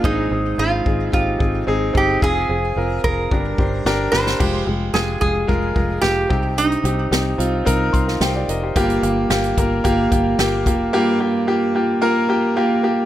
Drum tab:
CC |----------------|----------------|x---------------|----------------|
HH |----------------|----------------|----------------|xxx-x-x-x-x-x-x-|
SD |----------------|------------o-oo|----o-------o---|----o------oo---|
BD |o-----o-o-o---o-|o-----o-o-o-----|o-----o-o-o---o-|--------o-o-----|

CC |----------------|----------------|
HH |xxx-xxx-x-x-x-x-|----------------|
SD |----o-------o---|----------------|
BD |o-----o-o-o---o-|----------------|